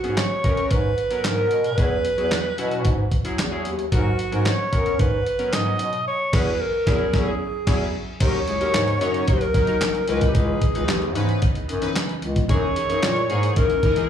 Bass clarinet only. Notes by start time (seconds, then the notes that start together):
0.04 G#2
0.44 F#2
0.71 G#2
1.25 G#2
1.51 B2
1.78 E2
2.19 E2
2.58 B2
2.85 G#2
3.39 E2
3.66 D#2
3.92 G#2
4.32 G#2
4.73 F#2
5.00 G#2
5.53 G#2
5.80 B2
6.33 E2
6.87 E2
7.14 E2
7.67 E2
8.21 D#2
8.61 D#2
8.74 G#2
9.01 F#2
9.28 D#2
10.08 C#2
10.35 C#2
10.75 C#2
10.88 D#2
11.15 G#2
11.69 F#2
12.22 C#2
12.50 F#2
12.90 F#2
13.03 A#2
13.30 G#2
13.57 F#2